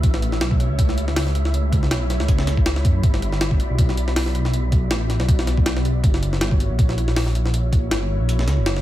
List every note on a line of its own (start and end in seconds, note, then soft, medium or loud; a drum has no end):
0.00 0.40 A1 medium
0.00 8.82 E4 medium
0.00 8.82 E5 medium
0.00 kick loud
0.00 closed hi-hat medium
0.14 snare medium
0.22 closed hi-hat medium
0.32 snare soft
0.41 0.68 B1 medium
0.41 snare loud
0.41 closed hi-hat medium
0.51 kick medium
0.60 closed hi-hat medium
0.70 1.90 C#2 medium
0.79 kick loud
0.79 closed hi-hat medium
0.89 snare soft
0.98 closed hi-hat medium
1.08 snare soft
1.16 snare loud
1.16 open hi-hat medium
1.27 snare soft
1.35 closed hi-hat medium
1.45 snare soft
1.54 closed hi-hat medium
1.72 kick medium
1.72 closed hi-hat medium
1.83 snare soft
1.91 2.18 B1 medium
1.91 snare loud
1.91 closed hi-hat medium
2.10 snare soft
2.10 closed hi-hat medium
2.20 2.86 C#2 medium
2.20 snare medium
2.28 kick loud
2.28 closed hi-hat medium
2.39 snare medium
2.47 snare soft
2.47 closed hi-hat medium
2.57 kick medium
2.66 snare loud
2.66 closed hi-hat medium
2.76 snare soft
2.85 3.02 F#2 loud
2.85 kick medium
2.85 closed hi-hat medium
3.03 3.58 G1 medium
3.03 kick loud
3.03 closed hi-hat medium
3.14 snare medium
3.22 closed hi-hat medium
3.32 snare soft
3.41 snare loud
3.41 closed hi-hat medium
3.51 kick medium
3.60 closed hi-hat medium
3.70 4.90 B1 medium
3.79 kick loud
3.79 closed hi-hat medium
3.89 snare soft
3.97 closed hi-hat medium
4.08 snare soft
4.16 snare loud
4.16 open hi-hat medium
4.26 snare soft
4.35 closed hi-hat medium
4.45 snare soft
4.54 closed hi-hat medium
4.72 kick medium
4.72 closed hi-hat medium
4.91 5.18 A1 medium
4.91 snare loud
4.91 closed hi-hat medium
5.10 snare soft
5.10 closed hi-hat medium
5.20 6.05 B1 medium
5.20 snare medium
5.29 kick loud
5.29 closed hi-hat medium
5.39 snare medium
5.47 snare soft
5.47 closed hi-hat medium
5.58 kick medium
5.66 snare loud
5.66 closed hi-hat medium
5.77 snare soft
5.85 closed hi-hat medium
6.04 6.40 F#1 medium
6.04 kick loud
6.04 closed hi-hat medium
6.14 snare soft
6.23 closed hi-hat medium
6.33 snare soft
6.41 6.68 G1 medium
6.41 snare loud
6.41 closed hi-hat medium
6.51 kick medium
6.60 closed hi-hat medium
6.70 7.90 A#1 medium
6.79 kick loud
6.79 closed hi-hat medium
6.89 snare soft
6.98 closed hi-hat medium
7.08 snare soft
7.16 snare loud
7.16 open hi-hat medium
7.27 snare soft
7.35 closed hi-hat medium
7.45 snare soft
7.54 closed hi-hat medium
7.73 kick medium
7.73 closed hi-hat medium
7.91 8.18 G1 medium
7.91 snare loud
7.91 closed hi-hat medium
8.20 8.47 A#1 medium
8.29 closed hi-hat medium
8.39 snare medium
8.47 8.59 C#2 medium
8.47 snare soft
8.47 closed hi-hat medium
8.58 8.82 F#1 medium
8.66 snare loud
8.66 closed hi-hat medium
8.77 snare soft